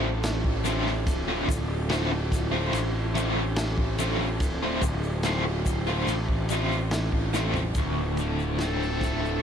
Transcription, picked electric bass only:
0.00 1.06 A1 medium
1.06 1.45 D1 medium
1.48 2.70 D1 medium
2.72 4.40 A1 medium
4.40 4.79 D1 medium
4.82 6.04 D1 medium
6.07 7.71 A1 medium
7.75 9.40 D1 medium

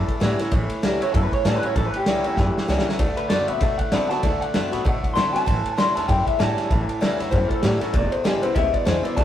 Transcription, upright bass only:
0.08 muted upright bass stroke medium
0.21 0.35 A2 medium
0.39 muted upright bass stroke medium
0.52 0.66 A1 loud
0.70 muted upright bass stroke medium
0.83 0.97 C#2 loud
1.01 1.11 E2 medium
1.14 1.28 F#2 medium
1.32 muted upright bass stroke medium
1.45 1.59 A2 loud
1.63 muted upright bass stroke medium
1.76 1.89 A1 loud
1.93 muted upright bass stroke medium
2.07 2.20 C#2 medium
2.25 2.35 E2 medium
2.38 2.51 F#2 medium
2.56 muted upright bass stroke medium
2.68 2.82 C#2 medium
2.86 muted upright bass stroke medium
2.99 3.13 D2 loud
3.17 muted upright bass stroke medium
3.30 3.44 F#2 medium
3.49 3.59 A2 medium
3.61 3.75 B2 medium
3.79 muted upright bass stroke medium
3.93 4.06 D3 medium
4.11 muted upright bass stroke medium
4.24 4.37 D2 loud
4.42 muted upright bass stroke medium
4.55 4.68 F#2 medium
4.73 4.83 A2 medium
4.86 4.99 B2 medium
5.04 muted upright bass stroke medium
5.17 5.30 D3 medium
5.34 muted upright bass stroke medium
5.47 5.61 A1 loud
5.66 muted upright bass stroke medium
5.78 5.92 C#2 medium
5.96 6.06 E2 medium
6.09 6.23 F#2 medium
6.27 muted upright bass stroke medium
6.40 6.54 A2 medium
6.58 muted upright bass stroke medium
6.71 6.84 A1 loud
6.89 muted upright bass stroke medium
7.02 7.15 C#2 loud
7.20 7.30 E2 medium
7.32 7.46 F#2 medium
7.50 muted upright bass stroke medium
7.64 7.77 A2 medium
7.81 muted upright bass stroke medium
7.94 8.08 E1 loud
8.13 muted upright bass stroke medium
8.25 8.39 G#1 medium
8.44 8.53 B1 medium
8.56 8.70 C#2 medium
8.74 muted upright bass stroke medium
8.87 9.01 E2 medium
9.05 muted upright bass stroke medium
9.17 9.24 D2 loud

